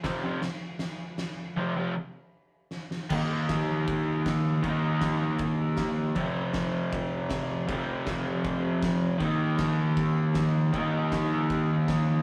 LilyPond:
<<
  \new Staff \with { instrumentName = "Overdriven electric guitar" } { \clef bass \time 4/4 \key ees \mixolydian \tempo 4 = 157 <f, c f>8 <f, c f>8 r2. | <f, c f>8 <f, c f>8 r2. | <ees bes ees'>1 | <ees bes ees'>1 |
<f, c f>1 | <f, c f>1 | <ees bes ees'>1 | <ees bes ees'>1 | }
  \new DrumStaff \with { instrumentName = "Drums" } \drummode { \time 4/4 <cymc bd sn>4 <cymc sn>4 <cymc sn>4 <cymc sn>4 | r4 r4 r4 sn8 sn8 | <cymc bd>4 <cymc bd sn>4 <cymc bd>4 <cymc bd sn>4 | <cymc bd>4 <cymc bd sn>4 <cymc bd>4 <cymc bd sn>4 |
<cymc bd>4 <cymc bd sn>4 <cymc bd>4 <cymc bd sn>4 | <cymc bd>4 <cymc bd sn>4 <cymc bd>4 <cymc bd sn>4 | <cymc bd>4 <cymc bd sn>4 <cymc bd>4 <cymc bd sn>4 | <cymc bd>4 <cymc bd sn>4 <cymc bd>4 <cymc bd sn>4 | }
>>